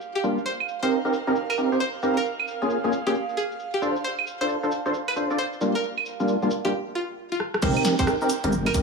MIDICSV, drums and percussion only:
0, 0, Header, 1, 2, 480
1, 0, Start_track
1, 0, Tempo, 447761
1, 493, Time_signature, 4, 2, 24, 8
1, 9459, End_track
2, 0, Start_track
2, 0, Title_t, "Drums"
2, 13, Note_on_c, 9, 69, 41
2, 120, Note_off_c, 9, 69, 0
2, 166, Note_on_c, 9, 69, 20
2, 252, Note_off_c, 9, 69, 0
2, 252, Note_on_c, 9, 69, 67
2, 359, Note_off_c, 9, 69, 0
2, 406, Note_on_c, 9, 69, 31
2, 493, Note_off_c, 9, 69, 0
2, 493, Note_on_c, 9, 69, 41
2, 600, Note_off_c, 9, 69, 0
2, 647, Note_on_c, 9, 69, 20
2, 647, Note_on_c, 9, 75, 62
2, 734, Note_off_c, 9, 69, 0
2, 734, Note_on_c, 9, 69, 75
2, 754, Note_off_c, 9, 75, 0
2, 841, Note_off_c, 9, 69, 0
2, 887, Note_on_c, 9, 69, 31
2, 973, Note_off_c, 9, 69, 0
2, 973, Note_on_c, 9, 69, 41
2, 1080, Note_off_c, 9, 69, 0
2, 1127, Note_on_c, 9, 69, 21
2, 1213, Note_off_c, 9, 69, 0
2, 1213, Note_on_c, 9, 69, 78
2, 1320, Note_off_c, 9, 69, 0
2, 1366, Note_on_c, 9, 69, 31
2, 1453, Note_off_c, 9, 69, 0
2, 1453, Note_on_c, 9, 69, 42
2, 1561, Note_off_c, 9, 69, 0
2, 1606, Note_on_c, 9, 69, 22
2, 1606, Note_on_c, 9, 75, 59
2, 1693, Note_off_c, 9, 69, 0
2, 1693, Note_on_c, 9, 69, 75
2, 1714, Note_off_c, 9, 75, 0
2, 1800, Note_off_c, 9, 69, 0
2, 1847, Note_on_c, 9, 69, 32
2, 1933, Note_off_c, 9, 69, 0
2, 1933, Note_on_c, 9, 69, 40
2, 2041, Note_off_c, 9, 69, 0
2, 2087, Note_on_c, 9, 69, 20
2, 2174, Note_off_c, 9, 69, 0
2, 2174, Note_on_c, 9, 69, 72
2, 2281, Note_off_c, 9, 69, 0
2, 2414, Note_on_c, 9, 69, 43
2, 2522, Note_off_c, 9, 69, 0
2, 2568, Note_on_c, 9, 69, 21
2, 2568, Note_on_c, 9, 75, 59
2, 2654, Note_off_c, 9, 69, 0
2, 2654, Note_on_c, 9, 69, 74
2, 2675, Note_off_c, 9, 75, 0
2, 2761, Note_off_c, 9, 69, 0
2, 2808, Note_on_c, 9, 69, 33
2, 2894, Note_off_c, 9, 69, 0
2, 2894, Note_on_c, 9, 69, 42
2, 3001, Note_off_c, 9, 69, 0
2, 3048, Note_on_c, 9, 69, 21
2, 3134, Note_off_c, 9, 69, 0
2, 3134, Note_on_c, 9, 69, 77
2, 3241, Note_off_c, 9, 69, 0
2, 3287, Note_on_c, 9, 69, 31
2, 3374, Note_off_c, 9, 69, 0
2, 3374, Note_on_c, 9, 69, 43
2, 3481, Note_off_c, 9, 69, 0
2, 3527, Note_on_c, 9, 69, 22
2, 3614, Note_off_c, 9, 69, 0
2, 3614, Note_on_c, 9, 69, 75
2, 3721, Note_off_c, 9, 69, 0
2, 3767, Note_on_c, 9, 69, 32
2, 3854, Note_off_c, 9, 69, 0
2, 3854, Note_on_c, 9, 69, 42
2, 3961, Note_off_c, 9, 69, 0
2, 4007, Note_on_c, 9, 69, 21
2, 4094, Note_off_c, 9, 69, 0
2, 4094, Note_on_c, 9, 69, 70
2, 4201, Note_off_c, 9, 69, 0
2, 4248, Note_on_c, 9, 69, 30
2, 4334, Note_off_c, 9, 69, 0
2, 4334, Note_on_c, 9, 69, 41
2, 4442, Note_off_c, 9, 69, 0
2, 4488, Note_on_c, 9, 69, 20
2, 4488, Note_on_c, 9, 75, 59
2, 4574, Note_off_c, 9, 69, 0
2, 4574, Note_on_c, 9, 69, 74
2, 4595, Note_off_c, 9, 75, 0
2, 4681, Note_off_c, 9, 69, 0
2, 4728, Note_on_c, 9, 69, 31
2, 4814, Note_off_c, 9, 69, 0
2, 4814, Note_on_c, 9, 69, 40
2, 4921, Note_off_c, 9, 69, 0
2, 4968, Note_on_c, 9, 69, 21
2, 5054, Note_off_c, 9, 69, 0
2, 5054, Note_on_c, 9, 69, 80
2, 5161, Note_off_c, 9, 69, 0
2, 5207, Note_on_c, 9, 69, 30
2, 5293, Note_off_c, 9, 69, 0
2, 5293, Note_on_c, 9, 69, 43
2, 5401, Note_off_c, 9, 69, 0
2, 5447, Note_on_c, 9, 69, 20
2, 5447, Note_on_c, 9, 75, 59
2, 5533, Note_off_c, 9, 69, 0
2, 5533, Note_on_c, 9, 69, 78
2, 5554, Note_off_c, 9, 75, 0
2, 5640, Note_off_c, 9, 69, 0
2, 5686, Note_on_c, 9, 69, 31
2, 5773, Note_off_c, 9, 69, 0
2, 5773, Note_on_c, 9, 69, 42
2, 5880, Note_off_c, 9, 69, 0
2, 5927, Note_on_c, 9, 69, 21
2, 6013, Note_off_c, 9, 69, 0
2, 6013, Note_on_c, 9, 69, 69
2, 6120, Note_off_c, 9, 69, 0
2, 6166, Note_on_c, 9, 69, 32
2, 6253, Note_off_c, 9, 69, 0
2, 6253, Note_on_c, 9, 69, 37
2, 6360, Note_off_c, 9, 69, 0
2, 6406, Note_on_c, 9, 69, 20
2, 6406, Note_on_c, 9, 75, 53
2, 6492, Note_off_c, 9, 69, 0
2, 6492, Note_on_c, 9, 69, 68
2, 6513, Note_off_c, 9, 75, 0
2, 6599, Note_off_c, 9, 69, 0
2, 6646, Note_on_c, 9, 69, 29
2, 6733, Note_off_c, 9, 69, 0
2, 6733, Note_on_c, 9, 69, 40
2, 6840, Note_off_c, 9, 69, 0
2, 6886, Note_on_c, 9, 69, 20
2, 6973, Note_off_c, 9, 69, 0
2, 6973, Note_on_c, 9, 69, 70
2, 7080, Note_off_c, 9, 69, 0
2, 7126, Note_on_c, 9, 69, 29
2, 7233, Note_off_c, 9, 69, 0
2, 7933, Note_on_c, 9, 37, 54
2, 8040, Note_off_c, 9, 37, 0
2, 8086, Note_on_c, 9, 37, 72
2, 8172, Note_on_c, 9, 49, 105
2, 8172, Note_on_c, 9, 69, 41
2, 8173, Note_on_c, 9, 36, 125
2, 8193, Note_off_c, 9, 37, 0
2, 8279, Note_off_c, 9, 49, 0
2, 8279, Note_off_c, 9, 69, 0
2, 8281, Note_off_c, 9, 36, 0
2, 8326, Note_on_c, 9, 69, 19
2, 8326, Note_on_c, 9, 75, 59
2, 8413, Note_off_c, 9, 69, 0
2, 8413, Note_on_c, 9, 38, 55
2, 8413, Note_on_c, 9, 46, 112
2, 8413, Note_on_c, 9, 69, 74
2, 8433, Note_off_c, 9, 75, 0
2, 8520, Note_off_c, 9, 38, 0
2, 8520, Note_off_c, 9, 46, 0
2, 8520, Note_off_c, 9, 69, 0
2, 8566, Note_on_c, 9, 42, 69
2, 8566, Note_on_c, 9, 69, 31
2, 8567, Note_on_c, 9, 36, 108
2, 8653, Note_off_c, 9, 69, 0
2, 8653, Note_on_c, 9, 37, 117
2, 8653, Note_on_c, 9, 69, 40
2, 8673, Note_off_c, 9, 42, 0
2, 8674, Note_off_c, 9, 36, 0
2, 8760, Note_off_c, 9, 37, 0
2, 8760, Note_off_c, 9, 69, 0
2, 8806, Note_on_c, 9, 69, 19
2, 8893, Note_off_c, 9, 69, 0
2, 8893, Note_on_c, 9, 46, 98
2, 8893, Note_on_c, 9, 69, 74
2, 9000, Note_off_c, 9, 46, 0
2, 9000, Note_off_c, 9, 69, 0
2, 9047, Note_on_c, 9, 42, 67
2, 9047, Note_on_c, 9, 69, 30
2, 9134, Note_off_c, 9, 69, 0
2, 9134, Note_on_c, 9, 69, 41
2, 9154, Note_off_c, 9, 42, 0
2, 9241, Note_off_c, 9, 69, 0
2, 9288, Note_on_c, 9, 69, 20
2, 9288, Note_on_c, 9, 75, 59
2, 9373, Note_on_c, 9, 36, 108
2, 9374, Note_off_c, 9, 69, 0
2, 9374, Note_on_c, 9, 46, 115
2, 9374, Note_on_c, 9, 69, 78
2, 9395, Note_off_c, 9, 75, 0
2, 9459, Note_off_c, 9, 36, 0
2, 9459, Note_off_c, 9, 46, 0
2, 9459, Note_off_c, 9, 69, 0
2, 9459, End_track
0, 0, End_of_file